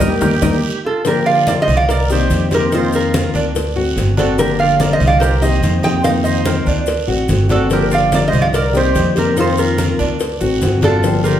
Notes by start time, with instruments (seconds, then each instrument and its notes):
Already playing: flute G4, resonator guitar played with a steel bar A#4
0.00 upright bass D#2, nylon-string guitar G3 A#3 D#4, cuban tres G4 A#4 D#5, low bongo, high conga, long guiro, maracas
0.21 upright bass D#2, nylon-string guitar G3 A#3 D#4, cuban tres G4 A#4 D#5, low bongo, high conga, long guiro, maracas
0.42 upright bass D#2, nylon-string guitar G3 A#3 D#4, cuban tres G4 A#4 D#5, low bongo, high conga, long guiro, maracas
0.84 flute F4, resonator guitar played with a steel bar A4
1.05 nylon-string guitar D3 F3 A#3 D4 G4, flute G4, resonator guitar played with a steel bar A#4, cowbell, high conga, long guiro, maracas
1.23 cuban tres F4, flute D5, resonator guitar played with a steel bar F5, high conga
1.47 flute A#4, resonator guitar played with a steel bar D5, cowbell, high conga, short guiro, maracas
1.61 flute C5, resonator guitar played with a steel bar D#5
1.67 upright bass C2, cuban tres D#5, high conga, short guiro, maracas
1.75 flute D5, resonator guitar played with a steel bar F5
1.88 flute A#4, cuban tres A#4, resonator guitar played with a steel bar D5, muted nylon-string guitar stroke, cowbell, high conga, long guiro, maracas
2.09 nylon-string guitar D#3 A#3 C4 G4, flute G4, resonator guitar played with a steel bar C5, cuban tres D#5, high conga, maracas
2.30 upright bass F2, nylon-string guitar D#3 A#3 C4 G4, cowbell, high conga, short guiro, maracas
2.51 nylon-string guitar D#3 A#3 C4 G4, flute G4, resonator guitar played with a steel bar A#4, cuban tres C5, cowbell, high conga, short guiro, maracas
2.72 nylon-string guitar D#3 A#3 C4 F4, cuban tres D#4, flute F4, resonator guitar played with a steel bar C5, cowbell, high conga, long guiro, maracas
2.92 flute F4, resonator guitar played with a steel bar A#4, high conga, maracas
3.14 cuban tres A#4, cowbell, high conga, short guiro, maracas
3.34 upright bass D2, cuban tres D4, high conga, short guiro, maracas
3.55 muted nylon-string guitar stroke, cowbell, high conga, long guiro, maracas
3.76 nylon-string guitar A3 C4 F#4, cuban tres F#4, high conga
3.96 upright bass G1, nylon-string guitar D3 A3 C4 F#4, cowbell, high conga, short guiro, maracas
4.17 nylon-string guitar A3 C4 F#4, cuban tres D4, flute F#4, resonator guitar played with a steel bar A4, cowbell, high conga, short guiro, maracas
4.38 nylon-string guitar D3 F3 A#3 D4 G4, flute G4, resonator guitar played with a steel bar A#4, cowbell, high conga, long guiro, maracas
4.59 cuban tres F4, flute D5, resonator guitar played with a steel bar F5, high conga
4.78 flute A#4, resonator guitar played with a steel bar D5, cowbell, high conga, short guiro, maracas
4.92 flute C5, resonator guitar played with a steel bar D#5
5.00 upright bass C2, cuban tres D#5, short guiro, maracas
5.06 flute D5, resonator guitar played with a steel bar F5
5.20 flute G4, cuban tres A#4, resonator guitar played with a steel bar C5, muted nylon-string guitar stroke, cowbell, long guiro, maracas
5.40 nylon-string guitar D#3 A#3 C4 G4, flute C5, cuban tres D#5, resonator guitar played with a steel bar D#5, high conga, maracas
5.62 upright bass F2, nylon-string guitar D#3 A#3 C4 G4, cowbell, high conga, short guiro, maracas
5.80 cuban tres C5, flute D#5, resonator guitar played with a steel bar G5, cowbell, high conga, short guiro, maracas
5.84 nylon-string guitar D#3 A#3 C4 G4
6.02 nylon-string guitar D#3 A#3, cuban tres D#4, flute C5, resonator guitar played with a steel bar F5, cowbell, high conga, long guiro, maracas
6.06 nylon-string guitar C4 F4
6.24 flute C5, resonator guitar played with a steel bar D#5, high conga, maracas
6.45 cuban tres A#4, cowbell, high conga, short guiro, maracas
6.66 upright bass D2, cuban tres D4, high conga, short guiro, maracas
6.86 muted nylon-string guitar stroke, cowbell, high conga, long guiro, maracas
7.07 upright bass A1, nylon-string guitar A3 C4 F#4, cuban tres F#4, high conga
7.28 upright bass G1, nylon-string guitar D3 A3 C4 F#4, cowbell, high conga, short guiro, maracas
7.49 nylon-string guitar A3 C4 F#4, cuban tres D4, flute F#4, resonator guitar played with a steel bar A4, cowbell, high conga, short guiro, maracas
7.70 nylon-string guitar D3 F3 A#3 D4 G4, flute G4, resonator guitar played with a steel bar A#4, cowbell, high conga, long guiro, maracas
7.91 cuban tres F4, flute D5, resonator guitar played with a steel bar F5, high conga, maracas
8.12 flute A#4, resonator guitar played with a steel bar D5, cowbell, high conga, short guiro, maracas
8.27 flute C5, resonator guitar played with a steel bar D#5
8.32 upright bass C2, cuban tres D#5, high conga, short guiro, maracas
8.41 flute D5, resonator guitar played with a steel bar F5
8.53 flute A#4, cuban tres A#4, resonator guitar played with a steel bar D5, muted nylon-string guitar stroke, cowbell, high conga, long guiro, maracas
8.74 nylon-string guitar D#3 A#3 C4 G4, flute G4, resonator guitar played with a steel bar C5, cuban tres D#5, high conga, maracas
8.94 upright bass F2, nylon-string guitar D#3 A#3 C4 G4, cowbell, high conga, short guiro, maracas
9.15 nylon-string guitar D#3 A#3 C4 G4, flute G4, resonator guitar played with a steel bar A#4, cuban tres C5, cowbell, high conga, short guiro, maracas
9.35 nylon-string guitar D#3 A#3 C4 F4, cuban tres D#4, flute F4, cowbell, high conga, long guiro, maracas
9.40 resonator guitar played with a steel bar C5
9.57 flute F4, resonator guitar played with a steel bar A#4, high conga, maracas
9.78 cuban tres A#4, cowbell, high conga, short guiro, maracas
9.99 upright bass D2, cuban tres D4, high conga, short guiro, maracas
10.20 muted nylon-string guitar stroke, cowbell, high conga, long guiro, maracas
10.41 upright bass A1, nylon-string guitar A3 C4 F#4, cuban tres F#4, high conga, maracas
10.61 upright bass G1, nylon-string guitar D3 A3 C4 F#4, cowbell, high conga, short guiro, maracas
10.81 nylon-string guitar A3 C4 F#4, cuban tres D4, flute F4, resonator guitar played with a steel bar A4, cowbell, high conga, short guiro, maracas
11.03 nylon-string guitar D3 F3 A#3 D4 G4, cowbell, high conga, long guiro, maracas
11.24 cuban tres F4, flute G4, resonator guitar played with a steel bar A#4, high conga, maracas